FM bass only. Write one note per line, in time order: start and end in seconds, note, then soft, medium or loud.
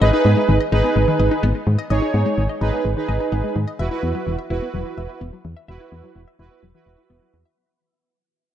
0.01 0.11 G#1 loud
0.25 0.35 G#2 loud
0.49 0.58 G#1 loud
0.72 0.82 G#1 loud
0.96 1.06 G#1 loud
1.20 1.29 G#1 medium
1.43 1.53 G#1 loud
1.67 1.77 G#2 loud
1.90 2.00 G#1 loud
2.14 2.24 G#2 medium
2.38 2.48 G#1 medium
2.61 2.71 G#1 loud
2.85 2.95 G#1 loud
3.09 3.18 G#1 medium
3.32 3.42 G#1 loud
3.56 3.66 G#2 loud
3.79 3.89 E1 loud
4.03 4.13 E2 loud
4.27 4.37 E1 loud
4.50 4.60 E1 loud
4.74 4.84 E1 loud
4.98 5.07 E1 medium
5.21 5.31 E1 medium
5.45 5.55 E2 loud
5.68 5.78 E1 loud
5.92 6.02 E2 loud
6.16 6.25 E1 loud
6.39 6.49 E1 loud
6.63 6.73 E1 medium
6.86 6.96 E1 medium
7.10 7.20 E1 medium
7.34 7.44 E2 loud